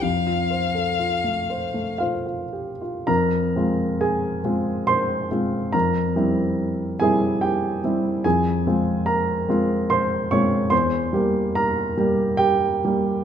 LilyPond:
<<
  \new Staff \with { instrumentName = "Violin" } { \time 3/4 \key f \major \tempo 4 = 71 f''2 r4 | \key f \minor r2. | r2. | r2. |
r2. | }
  \new Staff \with { instrumentName = "Grand piano" } { \time 3/4 \key f \major << { r2 <f' f''>4 | \key f \minor <bes' bes''>4 <aes' aes''>4 <c'' c'''>4 | <bes' bes''>4. <aes' aes''>8 <g' g''>8 r8 | <aes' aes''>4 <bes' bes''>4 <c'' c'''>8 <des'' des'''>8 |
<c'' c'''>4 <bes' bes''>4 <g' g''>4 | } \\ { f,16 f'16 c''16 a'16 f'16 a16 c''16 a16 c''16 f'16 g'16 f'16 | f,8 <aes c' f'>4 <aes c' f'>4 <aes c' f'>8 | f,8 <g c' e'>4 <g c' e'>4 <g c' e'>8 | f,8 <aes c' f'>4 <aes c' f'>4 <aes c' f'>8 |
e,8 <g bes g'>4 <g bes g'>4 <g bes g'>8 | } >> }
>>